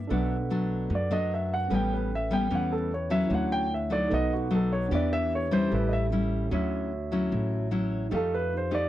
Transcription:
Already playing: grand piano E5
0.08 upright bass B1, nylon-string guitar B2 F#3 A3 D4, tine electric piano D4 A4 B4
0.13 tine electric piano F#5
0.50 nylon-string guitar F#3 A3 D4
0.90 upright bass F#2, nylon-string guitar F#2
0.95 grand piano D5
1.11 nylon-string guitar F#3 A3 D4, grand piano D#5
1.34 grand piano E5
1.54 grand piano F#5
1.68 upright bass A1, nylon-string guitar A2 G3 B3 C#4, tine electric piano C#4 A4 B4
1.74 tine electric piano G5, grand piano G5
1.94 grand piano B4
2.15 grand piano E5
2.31 nylon-string guitar G3 B3 C#4, grand piano G5
2.50 upright bass E2, nylon-string guitar E3 G3 B3 C#4
2.55 grand piano F#5
2.72 grand piano A4
2.94 grand piano C#5
3.10 nylon-string guitar F#3 C#4 E4, grand piano E5
3.27 upright bass D2, nylon-string guitar D3, tine electric piano E4 C#5
3.31 tine electric piano D4 F#5, grand piano F#5
3.52 grand piano G5
3.74 grand piano E5
3.90 nylon-string guitar F#3 A3 D#4, grand piano D5
4.08 upright bass B1, nylon-string guitar B2, tine electric piano D#4 A4 B4
4.14 grand piano D#5, tine electric piano F#5
4.33 grand piano F#4
4.51 nylon-string guitar F#3 A3 D#4, grand piano A4
4.72 grand piano C#5
4.89 upright bass E2, nylon-string guitar E3 B3 D4 G4, tine electric piano D4 G4 B4
4.95 grand piano D5, tine electric piano E5
5.13 grand piano E5
5.35 grand piano C#5
5.51 nylon-string guitar G3 C#4 E4, grand piano C5
5.68 upright bass A1, nylon-string guitar A2, tine electric piano C#4 G4 A4
5.74 grand piano B4, tine electric piano E5
5.89 grand piano D#5
5.93 grand piano E5
6.12 nylon-string guitar G3 C#4 E4
6.51 upright bass D2, nylon-string guitar D3 F#3 C#4 E4, tine electric piano F#4 C#5 E5
7.12 nylon-string guitar F#3 C#4 E4
7.32 upright bass A1, nylon-string guitar A2
7.71 nylon-string guitar F#3 C#4 E4
8.09 upright bass F2, nylon-string guitar F3 A3 D#4 G4, tine electric piano D#4 G4 A4
8.15 grand piano A4, tine electric piano F5
8.34 grand piano B4
8.57 grand piano C5
8.71 nylon-string guitar A3 D#4 G4, grand piano D5

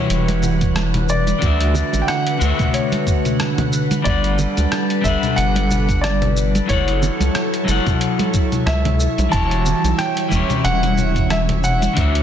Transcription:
Already playing: clean electric guitar E3 E4 F#4 G4 C#5, analog synth pad E3 G3 B4 F#5, grand piano C#5
0.10 analog synth bass E1, closed hi-hat, shaker
0.28 closed hi-hat, high conga
0.43 muted conga, low conga, shaker
0.61 kick, closed hi-hat, shaker
0.76 cross-stick, closed hi-hat, high conga, shaker
0.94 closed hi-hat, low conga
1.09 grand piano D5, shaker
1.27 closed hi-hat, high conga, shaker
1.39 analog synth bass D2, clean electric guitar D3 D4 F#4, analog synth pad D3 A3, kick, closed hi-hat, shaker
1.44 clean electric guitar D5 E5
1.61 closed hi-hat
1.75 low conga, shaker
1.93 analog synth bass A1, closed hi-hat, high conga, shaker
2.02 grand piano G5
2.08 grand piano F#5, cross-stick, closed hi-hat, shaker
2.27 closed hi-hat
2.38 analog synth bass D2, clean electric guitar D3 D4 F#4, shaker
2.43 clean electric guitar C#5 E5
2.59 kick, closed hi-hat, muted conga, low conga, shaker
2.73 grand piano C#5, closed hi-hat, shaker
2.92 closed hi-hat, high conga
3.07 kick, shaker
3.25 closed hi-hat, low conga, shaker
3.39 cross-stick, closed hi-hat, high conga, shaker
3.58 closed hi-hat, low conga
3.73 shaker
3.91 closed hi-hat, high conga, shaker
4.02 analog synth bass G1, clean electric guitar G3 D4 A4, analog synth pad G3 A4 B4, grand piano D5, kick, closed hi-hat, shaker
4.08 clean electric guitar B4 F#5
4.24 closed hi-hat
4.39 low conga, shaker
4.57 analog synth bass D2, closed hi-hat, high conga, shaker
4.72 cross-stick, closed hi-hat, shaker
4.90 closed hi-hat
5.01 analog synth bass G1, clean electric guitar G3 D4 A4, grand piano E5, kick, shaker
5.07 clean electric guitar B4 F#5
5.23 closed hi-hat, low conga, shaker
5.36 analog synth bass G1, grand piano F#5, closed hi-hat, shaker
5.56 closed hi-hat, high conga
5.71 muted conga, low conga, shaker
5.89 kick, closed hi-hat, shaker
6.01 grand piano D5, cross-stick, closed hi-hat, high conga, shaker
6.22 closed hi-hat, low conga
6.37 shaker
6.55 closed hi-hat, high conga, shaker
6.66 analog synth bass F#1, clean electric guitar F#3 E4 A4, analog synth pad F#3 E4 A4 C#5, grand piano C#5, kick, closed hi-hat
6.70 clean electric guitar C#5 F#5, shaker
6.88 closed hi-hat
7.03 low conga, shaker
7.20 analog synth bass C#2, closed hi-hat, high conga, shaker
7.35 cross-stick, closed hi-hat, shaker
7.54 closed hi-hat
7.65 analog synth bass F#1, clean electric guitar F#3 E4 A4, shaker
7.69 clean electric guitar C#5 F#5, high conga
7.87 kick, closed hi-hat, muted conga, low conga, shaker
8.01 closed hi-hat, shaker
8.19 closed hi-hat, high conga
8.34 kick, muted conga, shaker
8.52 closed hi-hat, low conga, shaker
8.66 analog synth bass C#2, grand piano E5, cross-stick, closed hi-hat, high conga, shaker
8.85 closed hi-hat, low conga
9.00 shaker
9.18 analog synth bass B1, closed hi-hat, high conga, shaker
9.29 analog synth bass E1, clean electric guitar E3 E4 F#4, analog synth pad E3 G3 E5, grand piano A5, kick, closed hi-hat
9.33 clean electric guitar G4 C#5, shaker
9.51 closed hi-hat
9.66 low conga, shaker
9.84 analog synth bass B1, closed hi-hat, high conga, shaker
9.98 grand piano G5, cross-stick, closed hi-hat, shaker
10.17 closed hi-hat
10.28 analog synth bass E1, clean electric guitar E3 C#4 E4, kick, high conga, shaker
10.34 clean electric guitar G4 C#5
10.50 closed hi-hat, low conga, shaker
10.64 analog synth bass E1, grand piano F#5, closed hi-hat, shaker
10.83 closed hi-hat, high conga
10.98 muted conga, low conga, shaker
11.16 kick, closed hi-hat, shaker
11.30 grand piano E5, cross-stick, closed hi-hat, high conga, shaker
11.49 closed hi-hat, low conga
11.64 grand piano F#5, shaker
11.82 closed hi-hat, high conga, shaker
11.93 analog synth bass D2, clean electric guitar D3 D4 F#4, analog synth pad D3 A3, kick, closed hi-hat, shaker
11.99 clean electric guitar C#5 E5
12.15 closed hi-hat

